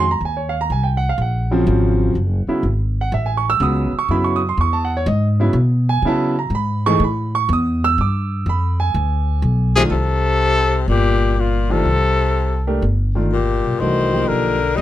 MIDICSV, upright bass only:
0, 0, Header, 1, 3, 480
1, 0, Start_track
1, 0, Tempo, 485044
1, 218, Time_signature, 4, 2, 24, 8
1, 14661, End_track
2, 0, Start_track
2, 0, Title_t, "Upright bass"
2, 0, Program_c, 0, 32
2, 0, Note_on_c, 0, 41, 91
2, 195, Note_off_c, 0, 41, 0
2, 203, Note_on_c, 0, 39, 73
2, 676, Note_off_c, 0, 39, 0
2, 692, Note_on_c, 0, 36, 80
2, 1161, Note_off_c, 0, 36, 0
2, 1165, Note_on_c, 0, 34, 84
2, 1637, Note_off_c, 0, 34, 0
2, 1649, Note_on_c, 0, 32, 94
2, 2119, Note_off_c, 0, 32, 0
2, 2129, Note_on_c, 0, 30, 79
2, 2431, Note_off_c, 0, 30, 0
2, 2602, Note_on_c, 0, 32, 81
2, 3076, Note_off_c, 0, 32, 0
2, 3088, Note_on_c, 0, 33, 94
2, 3556, Note_off_c, 0, 33, 0
2, 3562, Note_on_c, 0, 37, 99
2, 3867, Note_off_c, 0, 37, 0
2, 4041, Note_on_c, 0, 42, 80
2, 4515, Note_off_c, 0, 42, 0
2, 4526, Note_on_c, 0, 40, 85
2, 4997, Note_off_c, 0, 40, 0
2, 5009, Note_on_c, 0, 44, 103
2, 5467, Note_off_c, 0, 44, 0
2, 5472, Note_on_c, 0, 47, 99
2, 5950, Note_off_c, 0, 47, 0
2, 5959, Note_on_c, 0, 49, 84
2, 6426, Note_off_c, 0, 49, 0
2, 6432, Note_on_c, 0, 44, 85
2, 6910, Note_off_c, 0, 44, 0
2, 6923, Note_on_c, 0, 45, 96
2, 7396, Note_off_c, 0, 45, 0
2, 7409, Note_on_c, 0, 40, 99
2, 7878, Note_off_c, 0, 40, 0
2, 7895, Note_on_c, 0, 43, 82
2, 8362, Note_off_c, 0, 43, 0
2, 8371, Note_on_c, 0, 41, 88
2, 8840, Note_off_c, 0, 41, 0
2, 8851, Note_on_c, 0, 38, 92
2, 9319, Note_off_c, 0, 38, 0
2, 9324, Note_on_c, 0, 35, 93
2, 9796, Note_off_c, 0, 35, 0
2, 9802, Note_on_c, 0, 36, 73
2, 10731, Note_off_c, 0, 36, 0
2, 10763, Note_on_c, 0, 31, 82
2, 11692, Note_off_c, 0, 31, 0
2, 11725, Note_on_c, 0, 36, 71
2, 12654, Note_off_c, 0, 36, 0
2, 12690, Note_on_c, 0, 31, 88
2, 13456, Note_off_c, 0, 31, 0
2, 13498, Note_on_c, 0, 35, 60
2, 13649, Note_off_c, 0, 35, 0
2, 13655, Note_on_c, 0, 36, 68
2, 14105, Note_off_c, 0, 36, 0
2, 14149, Note_on_c, 0, 35, 58
2, 14593, Note_off_c, 0, 35, 0
2, 14626, Note_on_c, 0, 31, 86
2, 14661, Note_off_c, 0, 31, 0
2, 14661, End_track
3, 0, Start_track
3, 0, Title_t, "Muted upright bass strokes"
3, 2447, Note_on_c, 9, 29, 40
3, 2546, Note_off_c, 9, 29, 0
3, 3885, Note_on_c, 9, 29, 36
3, 3984, Note_off_c, 9, 29, 0
3, 14661, End_track
0, 0, End_of_file